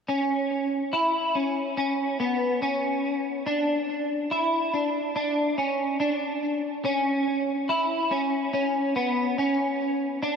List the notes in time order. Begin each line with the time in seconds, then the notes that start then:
0.08 C#4
0.93 E4
1.35 C#4
1.77 C#4
2.20 B3
2.62 C#4
3.46 D4
4.31 E4
4.74 D4
5.16 D4
5.58 C#4
6.00 D4
6.85 C#4
7.69 E4
8.11 C#4
8.53 C#4
8.96 B3
9.38 C#4
10.22 D4